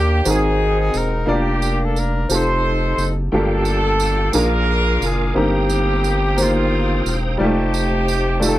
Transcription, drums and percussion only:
0.25 tambourine
0.94 tambourine
1.62 tambourine
1.96 tambourine
2.30 tambourine
2.98 tambourine
3.65 tambourine
4.00 tambourine
4.33 tambourine
5.02 tambourine
5.70 tambourine
6.04 tambourine
6.38 tambourine
7.06 tambourine
7.74 tambourine
8.08 tambourine
8.42 tambourine

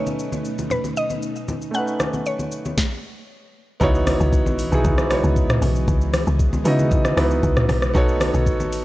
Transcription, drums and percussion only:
0.07 high conga, shaker
0.19 shaker
0.32 high conga, shaker
0.45 shaker
0.58 high conga, shaker
0.70 low conga, shaker
0.84 high conga, shaker
0.97 shaker
1.10 high conga, shaker
1.22 shaker
1.36 shaker
1.48 high conga, low conga, shaker
1.62 shaker
1.74 shaker
1.87 shaker
2.00 cross-stick, high conga, shaker
2.13 high conga, shaker
2.26 shaker
2.39 high conga, shaker
2.52 shaker
2.65 high conga, shaker
2.78 kick, snare
3.81 kick, shaker
3.95 shaker
4.07 cross-stick, open hi-hat, high conga, shaker
4.20 high conga, shaker
4.33 kick, shaker
4.46 high conga, shaker
4.59 open hi-hat, shaker
4.72 high conga, shaker
4.84 kick, low conga, shaker
4.98 cross-stick, high conga, shaker
5.11 cross-stick, open hi-hat, shaker
5.24 high conga, shaker
5.36 kick, shaker
5.50 cross-stick, mid tom, shaker
5.62 open hi-hat, high conga, low conga, shaker
5.75 shaker
5.88 kick, shaker
6.01 shaker
6.13 cross-stick, open hi-hat, high conga, shaker
6.27 high conga, shaker
6.39 kick, shaker
6.53 high conga, shaker
6.65 open hi-hat, shaker
6.79 high conga, shaker
6.91 kick, low conga, shaker
7.05 cross-stick, high conga, shaker
7.17 cross-stick, open hi-hat, shaker
7.31 high conga, shaker
7.43 kick, shaker
7.57 cross-stick, mid tom, shaker
7.69 cross-stick, open hi-hat, high conga, low conga, shaker
7.82 cross-stick, shaker
7.95 kick, shaker
8.08 shaker
8.20 cross-stick, open hi-hat, high conga, shaker
8.34 high conga, shaker
8.46 kick, shaker
8.60 high conga, shaker
8.73 open hi-hat, shaker

